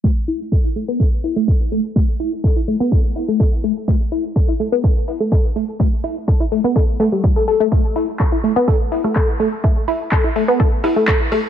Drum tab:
HH |--o---o---o---o-|--o---o---o---o-|--o---o---o---o-|--o---o---o---o-|
CP |----------------|----------------|----------------|----------------|
SD |----------------|----------------|----------------|----------------|
BD |o---o---o---o---|o---o---o---o---|o---o---o---o---|o---o---o---o---|

HH |--o---o---o---o-|--o---o---o---o-|
CP |----x-------x---|----x-------x---|
SD |-----------r----|----------r---r-|
BD |o---o---o---o---|o---o---o---o---|